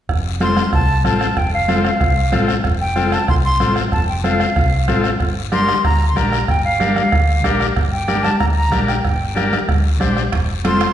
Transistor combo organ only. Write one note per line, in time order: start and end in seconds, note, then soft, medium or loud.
0.41 0.63 C4 medium
0.41 0.63 F4 medium
0.41 0.63 A4 medium
1.04 1.27 C4 medium
1.04 1.27 F4 medium
1.04 1.27 A4 medium
1.68 1.91 C4 medium
1.68 1.91 F4 medium
1.68 1.91 A4 medium
2.32 2.55 C4 medium
2.32 2.55 F4 medium
2.32 2.55 A4 medium
2.96 3.18 C4 medium
2.96 3.19 F4 medium
2.96 3.19 A4 medium
3.60 3.83 C4 medium
3.60 3.83 F4 medium
3.60 3.83 A4 medium
4.24 4.47 C4 medium
4.24 4.47 F4 medium
4.24 4.47 A4 medium
4.88 5.10 C4 medium
4.88 5.11 F4 medium
4.88 5.11 A4 medium
5.52 5.75 D4 medium
5.52 5.75 G4 medium
5.52 5.75 A#4 medium
6.16 6.39 D4 medium
6.16 6.39 G4 medium
6.16 6.39 A#4 medium
6.80 7.02 D4 medium
6.80 7.03 G4 medium
6.80 7.03 A#4 medium
7.44 7.67 D4 medium
7.44 7.67 G4 medium
7.44 7.67 A#4 medium
8.08 8.31 D4 medium
8.08 8.31 G4 medium
8.08 8.31 A#4 medium
8.71 8.94 D4 medium
8.71 8.95 G4 medium
8.71 8.95 A#4 medium
9.35 9.58 D4 medium
9.35 9.59 G4 medium
9.35 9.59 A#4 medium
10.00 10.23 D4 medium
10.00 10.23 G4 medium
10.00 10.23 C5 medium
10.64 10.87 C4 medium
10.64 10.87 F4 medium
10.64 10.87 A4 medium